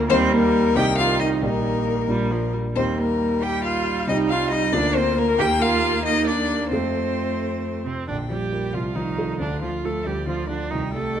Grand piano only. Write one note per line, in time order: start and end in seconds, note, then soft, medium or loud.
0.00 0.13 D2 medium
0.00 0.09 A#3 medium
0.00 0.13 F4 medium
0.00 0.12 A#4 medium
0.08 0.73 D#2 medium
0.08 0.73 A#3 medium
0.08 0.74 D#4 medium
0.08 0.74 G4 medium
0.75 1.40 C2 medium
0.75 1.41 C4 medium
0.75 1.41 D#4 medium
0.75 1.41 G4 medium
1.42 2.06 A#1 soft
1.42 2.07 G3 soft
1.42 2.08 D#4 soft
1.42 2.08 G4 soft
2.07 2.73 A#1 soft
2.07 2.74 A#3 soft
2.07 2.74 D4 soft
2.07 2.74 F4 soft
2.76 4.04 D#2 soft
2.76 4.04 A#3 soft
2.76 4.04 D#4 soft
2.76 4.05 G4 soft
4.07 4.71 C2 medium
4.07 4.72 C4 soft
4.07 4.72 D#4 soft
4.07 4.72 G4 soft
4.72 5.37 D2 medium
4.72 5.37 A#3 medium
4.72 5.37 F4 soft
4.72 5.37 A#4 soft
5.39 6.68 D#2 medium
5.39 6.68 A#3 soft
5.39 6.68 G4 soft
5.39 6.69 A#4 soft
6.71 8.04 F2 soft
6.71 8.04 F3 soft
6.71 8.05 F4 soft
6.71 8.05 A4 soft
8.09 8.73 A#1 soft
8.30 8.66 F3 soft
8.52 8.72 F4 soft
8.52 8.73 A#4 soft
8.73 9.38 C2 soft
8.96 9.32 F3 soft
9.18 9.38 F4 soft
9.18 9.38 A4 soft
9.40 10.05 D2 soft
9.62 9.98 F3 soft
9.84 10.19 F4 soft
10.06 10.70 D2 soft
10.27 10.63 F3 soft
10.49 10.72 F4 soft
10.72 11.20 C2 soft
10.95 11.20 G3 soft
11.15 11.20 D#4 soft
11.15 11.20 G4 soft